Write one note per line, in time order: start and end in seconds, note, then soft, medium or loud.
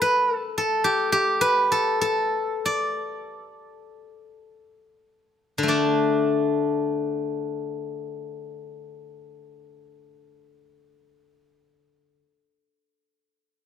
0.00 0.36 A4 medium
0.00 0.36 B4 medium
0.36 0.58 A4 medium
0.58 1.71 A4 medium
0.84 1.12 G4 medium
1.12 3.48 G4 medium
1.41 3.46 B4 medium
1.72 2.01 A4 medium
2.01 4.21 A4 medium
2.66 4.78 D5 medium
5.58 12.21 D3 soft
5.63 11.29 A3 soft
5.68 10.44 D4 soft
5.68 8.99 D5 soft